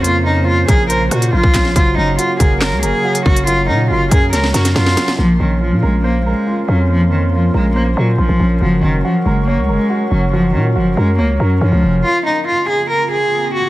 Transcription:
<<
  \new Staff \with { instrumentName = "Ambient pad" } { \time 4/4 \key bes \minor \tempo 4 = 140 << { <f' c''>1 | bes'1~ | bes'1 | <f'' c'''>1~ |
<f'' c'''>1 | <ges'' des'''>1~ | <ges'' des'''>1 | <c' f'>1 | } \\ { <des bes>1 | <des ges>1~ | <des ges>1 | <des' bes'>1~ |
<des' bes'>1~ | <des' bes'>1~ | <des' bes'>1 | <des bes>1 | } >> }
  \new Staff \with { instrumentName = "Grand piano" } { \time 4/4 \key bes \minor <bes des' f' bes' c''>8 des'8 f'8 bes'8 c''8 bes'8 f'8 des'8 | ges8 des'8 ges'8 bes'8 des''8 bes'8 ges'8 des'8 | ges8 des'8 ges'8 bes'8 des''8 bes'8 ges8 des'8 | bes8 des'8 f'8 bes'8 c''8 bes'8 f'8 des'8 |
bes8 des'8 f'8 bes'8 c''8 bes'8 f'8 des'8 | ges8 des'8 ges'8 bes'8 des''8 bes'8 ges'8 des'8 | ges8 des'8 ges'8 bes'8 des''8 bes'8 des'8 des'8 | r1 | }
  \new Staff \with { instrumentName = "Cello" } { \time 4/4 \key bes \minor f'8 ees'8 f'8 aes'8 bes'8 ges'8 f'4 | f'8 ees'8 f'8 aes'8 bes'8 aes'4 ges'8 | f'8 ees'8 f'8 aes'8 bes'8 ges'8 f'4 | f8 ees8 f8 aes8 bes8 aes4 ges8 |
f8 ees8 f8 aes8 bes8 ges8 f4 | f8 ees8 f8 aes8 bes8 aes4 ges8 | f8 ees8 f8 aes8 bes8 ges8 f4 | f'8 ees'8 f'8 aes'8 bes'8 aes'4 ges'8 | }
  \new Staff \with { instrumentName = "808-style bass" } { \clef bass \time 4/4 \key bes \minor f,4. bes,,4 bes,8 bes,,16 bes,,16 bes,,8 | ges,,8 ges,,8 r8 ges,,8. des,16 ges,,16 r8. ges,,8~ | ges,,8 bes,8 ges,,8 ges,8 des,8 ges,8 ges,8 r8 | bes,,8 bes,,8. bes,16 bes,,4~ bes,,16 r8. f,8~ |
f,4. bes,,4 bes,8 bes,,16 bes,,16 bes,,8 | ges,,8 ges,,8 r8 ges,,8. des,16 ges,,16 r8. ges,,8~ | ges,,8 bes,8 ges,,8 ges,8 des,8 ges,8 ges,16 des,16 f,,8 | r1 | }
  \new DrumStaff \with { instrumentName = "Drums" } \drummode { \time 4/4 hh4 r8 <hh bd>8 hh8 <hh ss>16 hh16 r16 bd16 <hc hh bd sn>16 sn16 | <hh bd>4 hh8 <hh bd>8 <hc sn>8 hh8 r16 hh16 bd16 hh16 | hh4 r8 <hh bd>8 <hh sn>16 sn16 <hh sn>16 <hh sn>16 sn16 sn16 <hh sn>16 sn16 | r4 r4 r4 r4 |
r4 r4 r4 r4 | r4 r4 r4 r4 | r4 r4 r4 r4 | r4 r4 r4 r4 | }
>>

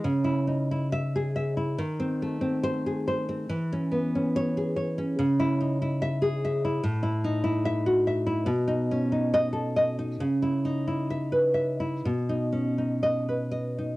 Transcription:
\new Staff \with { instrumentName = "Nylon-string guitar" } { \time 2/4 \key cis \minor \tempo 4 = 70 << { r4 e''8 r8 | r4 bis'8 r8 | r4 cis''8 r8 | r4 e''8 r8 |
\key b \mixolydian r4 e''8 r8 | r4 dis''8 r8 | r4 e''8 r8 | r4 dis''8 r8 | } \\ { cis16 e'16 dis'16 e'8 gis'16 e''16 e'16 | dis16 bis16 a16 bis8 gis'16 bis'16 bis16 | e16 cis'16 b16 cis'8 gis'16 cis''16 cis'16 | cis16 e'16 dis'16 e'8 gis'16 e''16 e'16 |
a,16 e'16 dis'16 e'8 fis'16 e''16 e'16 | b,16 dis'16 cis'16 dis'8 a'16 dis''16 dis'16 | cis16 e'16 dis'16 e'8 b'16 e''16 e'16 | b,16 dis'16 cis'16 dis'8 b'16 dis''16 dis'16 | } >> }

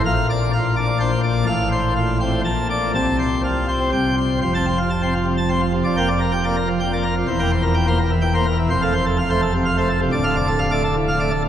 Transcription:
<<
  \new Staff \with { instrumentName = "Pipe organ" } { \time 3/4 \key f \major \tempo 4 = 126 f''8 d''8 f'8 d''8 c''8 d''8 | f''8 c''8 f'8 c''8 a''8 d''8 | a''8 c''8 f'8 c''8 g''8 c''8 | c''16 a''16 c''16 f'16 a''16 c''16 f'16 c16 a''16 c''16 f'16 c16 |
d''16 g''16 d''16 bes'16 g''16 d''16 bes'16 f16 g''16 d''16 bes'16 f16 | c''16 g''16 c''16 bes'16 g''16 c''16 bes'16 e16 g''16 c''16 bes'16 e16 | c''16 f''16 c''16 a'16 f''16 c''16 a'16 c16 f''16 c''16 a'16 c16 | d''16 f''16 d''16 a'16 f''16 d''16 a'16 a,16 f''16 d''16 a'16 a,16 | }
  \new Staff \with { instrumentName = "Pipe organ" } { \clef bass \time 3/4 \key f \major << { bes,4. d'16 r16 d'16 r8. | a,4. c'16 r16 bes,4 | c4. c'16 r16 c4 | f,16 c'16 r8. c'16 r8. c'16 r8 |
f,16 bes16 r8. bes16 r8. bes16 r8 | e,16 bes16 r8. bes16 r8. bes16 r8 | f,16 a16 r8. a16 r8. a16 r8 | d,16 a16 r8. a16 r8. a16 r8 | } \\ { bes,,2. | a,,2 bes,,4 | c,2 c,4 | f,,2. |
f,,2. | e,,2. | f,,2. | d,,2. | } >> }
>>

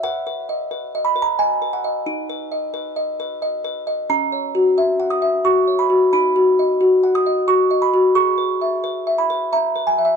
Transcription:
\new Staff \with { instrumentName = "Music box" } { \time 3/4 \key b \major \tempo 4 = 88 << { fis''4. b''16 ais''16 gis''8 fis''8~ | fis''2~ fis''8 r8 | ais''4. dis'''8 cis'''8 b''8 | b''4. dis'''8 cis'''8 b''8 |
cis'''4. b''8 ais''8 gis''16 e''16 | } \\ { \tuplet 3/2 { b'8 b'8 dis''8 b'8 dis''8 b'8 dis''8 b'8 dis''8 } | \tuplet 3/2 { dis'8 b'8 dis''8 b'8 dis''8 b'8 dis''8 b'8 dis''8 } | \tuplet 3/2 { cis'8 cis''8 fis'8 e''8 fis''8 e''8 fis'8 cis''8 fis'8 } | \tuplet 3/2 { dis'8 fis'8 dis''8 fis'8 fis''8 dis''8 fis'8 dis''8 fis'8 } |
\tuplet 3/2 { gis'8 b'8 e''8 b'8 e''8 b'8 e''8 b'8 e''8 } | } >> }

